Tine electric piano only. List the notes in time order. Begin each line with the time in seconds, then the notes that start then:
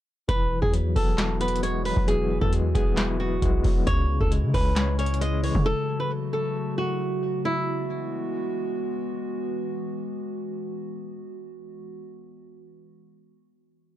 0.28 E3
0.73 F#3
0.96 B3
1.19 E4
1.41 B3
1.63 G#3
1.86 F#3
2.08 E3
2.53 G#3
2.74 B3
2.97 E4
3.20 B3
3.42 G#3
3.65 F#3
3.87 C#3
4.32 G#3
4.54 C#4
4.77 C#5
4.99 C#4
5.21 G#3
5.44 E3